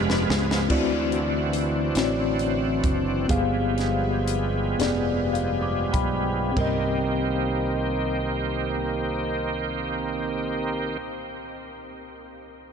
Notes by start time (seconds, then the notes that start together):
Already playing: F1 G2 F3 G#3 B3 D4 F4 G4 B4
0.10 snare
0.30 C#2, snare
0.51 snare
0.69 D2 D3 E3 C4 D4 E4 F#4 D5, kick, crash
1.12 closed hi-hat
1.53 closed hi-hat
1.95 A1 C4 E4 F#4 C#5, snare, closed hi-hat
2.04 D5
2.39 closed hi-hat
2.84 F#1, kick, closed hi-hat
3.28 G1 G2 F3 G3 G#3 B3 G4 G#4 F5, kick, closed hi-hat
3.78 snare, closed hi-hat
4.28 closed hi-hat
4.79 F1 B3 G4 G#4 D5, snare, closed hi-hat
5.34 F5, closed hi-hat
5.63 D6
5.93 B1 G5 B5, kick, closed hi-hat
6.24 G5
6.51 C4 G4
6.56 C2 D#3 A#3 C4 G4 A#4, kick, floor tom, china
6.61 D#5